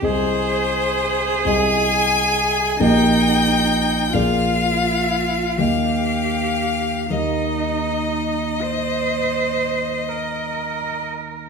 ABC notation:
X:1
M:12/8
L:1/8
Q:3/8=41
K:Eb
V:1 name="Violin"
c3 a3 g3 f3 | f3 e8 z |]
V:2 name="Cello"
A6 E3 F3 | G3 E3 c3 B3 |]
V:3 name="Grand piano"
[C,,A,Ae]3 [C,,A,Ae]3 [B,,,B,Ge]3 [B,,,B,Ad]3 | [E,,B,Ge]3 [E,,B,Ge]8- [E,,B,Ge] |]